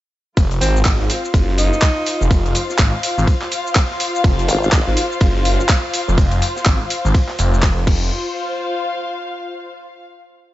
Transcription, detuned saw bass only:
0.37 0.60 F1 medium
0.61 0.98 G#1 medium
1.00 1.08 G#1 loud
1.34 1.70 F#1 medium
2.21 2.29 F1 loud
2.31 2.53 F1 medium
2.79 2.91 G#1 loud
3.18 3.26 G#1 medium
4.24 4.47 F1 loud
4.87 4.95 G#1 loud
5.21 5.57 F#1 medium
6.08 6.16 F1 loud
6.18 6.40 F1 medium
6.66 6.78 G#1 loud
7.05 7.13 G#1 loud
7.39 7.86 F1 loud
7.87 8.10 F1 loud

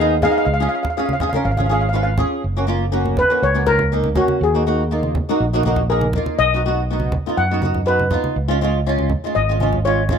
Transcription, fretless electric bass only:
0.00 0.26 D#2 loud
0.46 0.66 C#2 loud
1.45 2.22 G#1 loud
2.44 3.21 F#1 medium
3.42 4.20 C#2 medium
4.41 5.18 D#2 medium
5.40 6.18 A#1 medium
6.39 7.16 B1 medium
7.37 8.15 F#2 medium
8.36 9.14 C#2 medium
9.36 10.13 G#1 medium

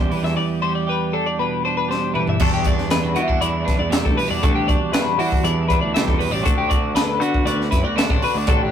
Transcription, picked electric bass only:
0.00 0.10 E2 medium
0.23 0.35 E2 medium
2.41 2.87 E2 loud
2.91 3.18 E2 medium
3.16 3.39 E3 loud
3.41 3.64 E2 loud
3.68 3.78 B1 medium
3.79 4.02 E2 medium
4.06 4.17 D2 medium
4.30 4.42 E2 medium
4.44 4.66 D2 loud
4.92 5.04 E3 medium
5.18 5.30 E3 medium
5.44 5.78 E2 loud
5.81 6.05 D2 medium
6.08 6.31 E2 medium
6.31 6.43 A1 loud
6.46 6.92 D2 loud
6.95 7.20 D2 medium
7.20 7.43 D3 loud
7.45 7.69 D2 loud
7.72 7.82 F#2 medium
7.83 8.06 D2 medium
8.10 8.21 A1 medium
8.35 8.46 D2 medium
8.48 8.71 A1 loud

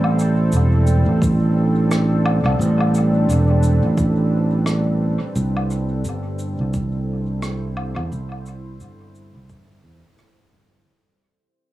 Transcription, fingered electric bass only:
0.00 0.50 A1 loud
0.52 1.03 E1 medium
1.06 2.41 A1 medium
2.44 2.58 C2 medium
2.59 3.26 A1 loud
3.29 3.79 E1 medium
3.83 5.17 A1 medium
5.35 6.02 C2 loud
6.04 6.55 G1 medium
6.59 7.93 C2 medium
7.96 8.10 E2 medium
8.12 8.78 C2 loud
8.80 9.31 G1 loud
9.35 9.49 C2 medium
9.49 9.80 G1 loud
9.84 10.01 E2 loud
10.53 10.84 G1 medium

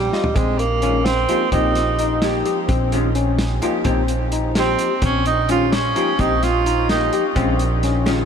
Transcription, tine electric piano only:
0.13 0.26 F4 medium
0.36 0.62 C4 medium
0.83 1.09 C#4 medium
1.29 1.42 F4 medium
1.52 1.78 C4 medium
1.99 2.25 D#4 medium
2.46 2.59 G4 medium
2.69 2.95 C4 medium
3.15 3.42 C#4 medium
3.63 3.76 F4 medium
3.86 4.12 C4 medium
4.33 4.59 D#4 medium
4.79 4.92 G4 medium
5.03 5.29 C4 medium
5.50 5.76 C#4 medium
5.96 6.09 F4 medium
6.20 6.46 C4 medium
6.66 6.93 D#4 medium
7.13 7.26 G4 medium
7.36 7.63 C4 medium
7.84 8.10 C#4 medium

